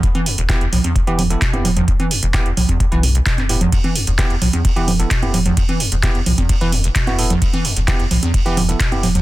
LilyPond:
<<
  \new Staff \with { instrumentName = "Tine electric piano" } { \time 4/4 \key e \minor \tempo 4 = 130 r4 <b e' g'>16 r4 <b e' g'>16 r16 <b e' a'>16 r16 <b e' g'>16 r8 | r4 <b e' g'>16 r4 <b e' b'>16 r4 <b e' g'>16 r16 | r4 <b e' g'>16 r4 <b e' g'>16 r16 <b e' a'>16 r16 <b e' g'>16 r8 | r4 <b e' g'>16 r4 <b e' b'>16 r8. <b e' fis'>16 <b e' a'>16 r16 |
r4 <b e' g'>16 r4 <b e' g'>16 r16 <b e' a'>16 r16 <b e' g'>16 r8 | }
  \new Staff \with { instrumentName = "Acid bass" } { \clef bass \time 4/4 \key e \minor r16 e16 e,16 e,,16 b,16 e,16 a,16 e,16 e,16 e16 e,16 e,,16 b,16 e,16 a,16 e,16 | e,16 e16 e,16 e,,16 b,16 e,16 a,16 e,16 e,16 e16 e,16 e,,16 b,16 e,16 a,16 e,16 | e,16 e16 e,16 e,16 b,16 e,16 a,16 e,16 e,16 e16 e,16 e,,16 b,16 e,16 a,16 e,16 | e,16 e16 e,16 e,16 b,16 e,16 a,16 e,16 e,16 e16 e,16 e,,16 b,16 e,16 a,16 e,16 |
e,16 e16 e,16 e,16 b,16 e,16 a,16 e,16 r16 e16 e,16 e,,16 b,16 e,16 a,16 e,16 | }
  \new Staff \with { instrumentName = "Sub bass" } { \clef bass \time 4/4 \key e \minor e,,16 r8 e,,8. b,,16 r8 e,,8. r16 e,,8. | e,,16 r8 e,,8. b,,16 r8 b,,8. r16 e,,8. | e,,16 r8 e,,8. b,,16 r8 e,,8. r16 e,,8. | e,,16 r8 e,,8. b,,16 r8 e,,8. r16 e,,8. |
e,,16 r8 e,,8. b,,16 r8 e,,8. r16 e,,8. | }
  \new DrumStaff \with { instrumentName = "Drums" } \drummode { \time 4/4 <hh bd>16 <cgho hh>16 hho16 hh16 <hc cgho hh bd>16 hh16 <cgl hho>16 <cgho hh>16 <hh bd>16 hh16 <cgho cgl hho>16 hh16 <hc hh bd>16 <cgho hh>16 <cgl hho>16 <cgl hh>16 | <hh bd>16 <cgho hh>16 hho16 hh16 <hc cgho hh bd>16 hh16 <cgl hho>16 <cgho hh bd>16 <hh bd>16 hh16 <cgho hho>16 hh16 <hc hh bd>16 <hc cgho hh>16 hho16 <cgl hh>16 | <hh bd cymr>16 <cgho hh>16 hho16 hh16 <hc cgho hh bd cymr>16 hh16 <cgl hho>16 <cgho hh>16 <hh bd cymr>16 hh16 <cgho cgl hho>16 hh16 <hc hh bd cymr>16 <cgho hh>16 <cgl hho>16 <cgl hh>16 | <hh bd cymr>16 <cgho hh>16 hho16 hh16 <hc cgho hh bd cymr>16 hh16 <cgl hho>16 <cgho hh bd>16 <hh bd cymr>16 hh16 <cgho hho>16 hh16 <hc hh bd cymr>16 <hc cgho hh>16 hho16 <cgl hh>16 |
<hh bd cymr>16 <cgho hh>16 hho16 hh16 <hc cgho hh bd cymr>16 hh16 <cgl hho>16 <cgho hh>16 <hh bd cymr>16 hh16 <cgho cgl hho>16 hh16 <hc hh bd cymr>16 <cgho hh>16 <cgl hho>16 <cgl hh>16 | }
>>